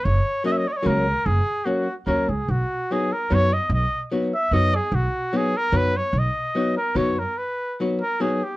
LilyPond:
<<
  \new Staff \with { instrumentName = "Trumpet" } { \time 3/4 \key b \major \tempo 4 = 148 cis''4 dis''32 e''32 dis''16 cis''32 dis''32 cis''16 ais'4 | gis'4 fis'4 ais'8 gis'8 | fis'4 gis'8 ais'8 cis''8 dis''8 | dis''8.~ dis''32 r8 r32 e''8 dis''8 gis'8 |
fis'4 gis'8 ais'8 b'8 cis''8 | dis''4. ais'8 cis''8 ais'8 | b'4 r8 ais'8 gis'8 g'8 | }
  \new Staff \with { instrumentName = "Hollow-body jazz guitar" } { \time 3/4 \key b \major r4 <fis ais cis' fis'>8 r8 <fis ais cis' fis'>8 r8 | r4 <fis ais cis' fis'>8 r8 <fis ais cis' fis'>8 r8 | r4 <fis b dis' fis'>8 r8 <fis b dis' fis'>8 r8 | r4 <fis b dis' fis'>8 r8 <fis b dis' fis'>8 r8 |
r4 <fis b dis' fis'>8 r8 <fis b dis' fis'>8 r8 | r4 <fis b dis' fis'>8 r8 <fis b dis' fis'>8 r8 | r4 <fis b dis' fis'>8 r8 <fis b dis' fis'>8 r8 | }
  \new Staff \with { instrumentName = "Upright bass" } { \clef bass \time 3/4 \key b \major fis,,8 r4. cis,4 | fis,,8 r4. dis,8 cis,8 | b,,8 r4. fis,4 | b,,8 r4. fis,4 |
b,,8 r4. fis,4 | b,,8 r4. fis,4 | r2. | }
>>